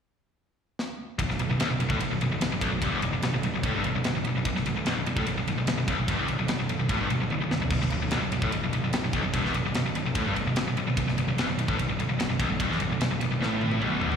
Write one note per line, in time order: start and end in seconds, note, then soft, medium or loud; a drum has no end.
0.79 snare medium
1.19 1.28 B0 medium
1.19 1.28 B1 medium
1.19 kick medium
1.19 ride medium
1.28 1.38 B0 medium
1.28 1.39 B1 medium
1.28 snare soft
1.39 1.48 B0 medium
1.39 1.49 B1 medium
1.39 ride medium
1.49 1.59 B0 medium
1.49 1.59 B1 medium
1.59 1.68 B0 medium
1.59 1.69 B1 loud
1.59 snare loud
1.59 ride medium
1.69 1.79 B0 medium
1.69 1.79 B1 medium
1.79 1.89 B0 medium
1.79 1.90 B1 medium
1.79 ride medium
1.90 1.98 A1 medium
1.90 2.00 A2 medium
1.90 kick loud
1.99 2.09 B0 medium
1.99 2.10 B1 medium
1.99 ride medium
2.09 2.19 B0 medium
2.09 2.20 B1 medium
2.20 2.30 B0 medium
2.20 2.31 B1 medium
2.20 ride medium
2.31 2.40 B0 medium
2.31 2.41 B1 medium
2.41 2.50 B0 medium
2.41 2.51 B1 medium
2.41 snare loud
2.41 ride loud
2.51 2.60 B0 medium
2.51 2.60 B1 medium
2.61 2.70 B0 medium
2.61 2.71 B1 loud
2.61 kick loud
2.61 ride medium
2.71 2.81 B0 medium
2.71 2.82 B1 medium
2.82 2.91 G1 medium
2.82 2.91 G2 loud
2.82 kick loud
2.82 ride medium
2.92 3.01 E1 loud
2.92 3.02 E2 medium
3.02 3.12 B0 medium
3.02 3.12 B1 medium
3.02 ride medium
3.13 3.22 B0 medium
3.13 3.22 B1 medium
3.22 3.33 B0 medium
3.22 3.33 B1 medium
3.22 snare loud
3.22 ride medium
3.34 3.43 B0 medium
3.34 3.43 B1 medium
3.43 3.53 B0 medium
3.43 3.54 B1 medium
3.43 ride medium
3.54 3.63 B0 medium
3.54 3.64 B1 medium
3.63 3.73 A1 medium
3.63 3.74 A2 loud
3.63 kick loud
3.63 ride medium
3.73 3.83 G1 medium
3.73 3.84 G2 loud
3.84 3.93 B0 medium
3.84 3.95 B1 medium
3.84 ride medium
3.93 4.03 B0 medium
3.93 4.05 B1 medium
4.04 4.14 B0 medium
4.04 4.15 B1 medium
4.04 snare loud
4.04 ride medium
4.14 4.24 B0 medium
4.14 4.25 B1 medium
4.24 4.34 B0 medium
4.24 4.36 B1 medium
4.24 ride medium
4.34 4.44 B0 medium
4.34 4.45 B1 medium
4.45 4.55 B0 medium
4.45 4.55 B1 medium
4.45 kick medium
4.45 ride medium
4.55 4.64 B0 medium
4.55 4.65 B1 medium
4.55 snare soft
4.65 4.74 B0 medium
4.65 4.76 B1 medium
4.65 ride medium
4.75 4.85 B0 medium
4.75 4.85 B1 medium
4.86 4.95 B0 medium
4.86 4.96 B1 loud
4.86 snare loud
4.86 ride medium
4.96 5.05 B0 medium
4.96 5.06 B1 medium
5.06 5.16 B0 medium
5.06 5.17 B1 medium
5.06 ride medium
5.16 5.26 A1 medium
5.16 5.26 A2 loud
5.16 kick loud
5.26 5.36 B0 medium
5.26 5.36 B1 medium
5.26 ride medium
5.37 5.47 B0 medium
5.37 5.47 B1 medium
5.47 5.56 B0 medium
5.47 5.57 B1 medium
5.47 ride medium
5.57 5.67 B0 medium
5.57 5.67 B1 medium
5.67 5.77 B0 medium
5.67 5.77 B1 medium
5.67 snare loud
5.67 ride loud
5.78 5.87 B0 medium
5.78 5.87 B1 medium
5.88 5.97 B0 loud
5.88 5.97 B1 loud
5.88 kick medium
5.88 ride medium
5.99 6.07 B0 medium
5.99 6.08 B1 medium
6.08 6.17 G1 loud
6.08 6.18 G2 loud
6.08 kick loud
6.08 ride medium
6.19 6.28 E1 medium
6.19 6.28 E2 medium
6.28 6.38 B0 medium
6.28 6.38 B1 medium
6.28 ride medium
6.39 6.48 B0 medium
6.39 6.48 B1 medium
6.48 6.58 B0 medium
6.48 6.58 B1 medium
6.48 snare loud
6.48 ride medium
6.58 6.68 B0 medium
6.58 6.69 B1 medium
6.69 6.78 B0 medium
6.69 6.78 B1 medium
6.69 ride medium
6.79 6.89 B0 medium
6.79 6.89 B1 medium
6.89 6.99 A1 medium
6.89 6.99 A2 medium
6.89 kick loud
6.89 ride medium
7.00 7.09 G1 medium
7.00 7.10 G2 loud
7.10 7.19 B0 medium
7.10 7.20 B1 medium
7.10 ride medium
7.20 7.30 B0 medium
7.20 7.31 B1 medium
7.30 7.40 B0 medium
7.30 7.40 B1 medium
7.30 high tom medium
7.41 7.50 B0 medium
7.41 7.51 B1 medium
7.51 7.60 B0 medium
7.51 7.60 B1 medium
7.51 snare medium
7.60 7.70 B0 medium
7.60 7.70 B1 medium
7.60 floor tom medium
7.70 7.80 B0 medium
7.70 7.80 B1 medium
7.70 kick loud
7.70 crash medium
7.81 7.91 B0 medium
7.81 7.91 B1 medium
7.81 snare soft
7.90 8.01 B0 medium
7.90 8.01 B1 medium
7.90 ride medium
8.02 8.11 B0 medium
8.02 8.11 B1 medium
8.11 8.21 B0 medium
8.11 8.20 B1 medium
8.11 snare loud
8.11 ride medium
8.21 8.31 B0 medium
8.21 8.31 B1 medium
8.32 8.41 B0 medium
8.32 8.42 B1 medium
8.32 ride medium
8.42 8.52 A1 medium
8.42 8.52 A2 medium
8.42 kick loud
8.52 8.62 B0 medium
8.52 8.62 B1 medium
8.52 ride medium
8.63 8.72 B0 medium
8.63 8.71 B1 medium
8.72 8.82 B0 medium
8.72 8.82 B1 medium
8.72 ride medium
8.83 8.93 B0 medium
8.83 8.92 B1 medium
8.93 9.02 B0 medium
8.93 9.03 B1 medium
8.93 snare loud
8.93 ride loud
9.03 9.12 B0 medium
9.03 9.13 B1 medium
9.13 9.23 B0 medium
9.13 9.23 B1 loud
9.13 kick loud
9.13 ride medium
9.24 9.33 B0 medium
9.24 9.34 B1 medium
9.33 9.43 G1 loud
9.33 9.44 G2 loud
9.33 kick loud
9.33 ride loud
9.44 9.54 E1 medium
9.44 9.54 E2 loud
9.44 snare soft
9.54 9.64 B0 medium
9.54 9.65 B1 medium
9.54 ride medium
9.64 9.73 B0 medium
9.64 9.75 B1 medium
9.74 9.84 B0 medium
9.74 9.84 B1 medium
9.74 snare loud
9.74 ride medium
9.85 9.94 B0 medium
9.85 9.95 B1 medium
9.95 10.04 B0 medium
9.95 10.05 B1 medium
9.95 ride medium
10.05 10.15 B0 medium
10.05 10.16 B1 medium
10.15 10.24 A1 medium
10.15 10.25 A2 loud
10.15 kick medium
10.15 ride loud
10.25 10.35 G1 medium
10.25 10.35 G2 loud
10.36 10.44 B0 medium
10.36 10.46 B1 medium
10.36 ride medium
10.45 10.54 B0 medium
10.45 10.56 B1 medium
10.55 10.65 B0 medium
10.55 10.66 B1 medium
10.55 snare loud
10.55 ride loud
10.65 10.75 B0 medium
10.65 10.77 B1 medium
10.75 10.85 B0 medium
10.75 10.86 B1 medium
10.75 ride medium
10.86 10.96 B0 medium
10.86 10.97 B1 medium
10.97 11.06 B0 medium
10.97 11.07 B1 medium
10.97 kick medium
10.97 ride medium
11.07 11.16 B0 medium
11.07 11.17 B1 medium
11.07 snare soft
11.17 11.26 B0 medium
11.17 11.27 B1 medium
11.17 ride medium
11.27 11.37 B0 medium
11.27 11.37 B1 medium
11.37 11.47 B0 loud
11.37 11.48 B1 loud
11.37 snare loud
11.37 ride medium
11.47 11.57 B0 medium
11.47 11.58 B1 medium
11.58 11.67 B0 medium
11.58 11.68 B1 medium
11.58 ride medium
11.68 11.77 A1 loud
11.68 11.78 A2 medium
11.68 kick loud
11.78 11.88 B0 medium
11.78 11.88 B1 medium
11.78 ride medium
11.89 11.98 B0 medium
11.89 11.99 B1 medium
11.99 12.08 B0 medium
11.99 12.08 B1 medium
11.99 ride medium
12.09 12.17 B0 medium
12.09 12.18 B1 medium
12.18 12.28 B0 medium
12.18 12.28 B1 medium
12.18 snare loud
12.18 ride medium
12.29 12.38 B0 medium
12.29 12.39 B1 medium
12.39 12.48 B0 medium
12.39 12.49 B1 loud
12.39 kick loud
12.39 ride medium
12.49 12.59 B0 medium
12.49 12.60 B1 medium
12.60 12.69 G1 loud
12.60 12.70 G2 loud
12.60 kick loud
12.60 ride loud
12.69 12.79 E1 loud
12.69 12.80 E2 medium
12.69 snare soft
12.79 12.89 B0 medium
12.79 12.91 B1 medium
12.79 ride medium
12.89 12.99 B0 medium
12.89 13.00 B1 medium
13.00 13.10 B0 medium
13.00 13.10 B1 medium
13.00 snare loud
13.00 ride loud
13.10 13.20 B0 medium
13.10 13.21 B1 medium
13.20 13.30 B0 medium
13.20 13.30 B1 medium
13.20 ride medium
13.31 13.40 B0 medium
13.31 13.41 B1 medium
13.41 13.79 A1 medium
13.41 13.81 A2 loud
13.41 snare medium
13.61 high tom medium
13.72 high tom medium
13.81 14.00 B0 medium
13.81 14.02 B1 loud
13.81 mid tom medium
14.01 14.16 E1 medium
14.01 14.16 E2 loud
14.01 floor tom medium
14.12 floor tom medium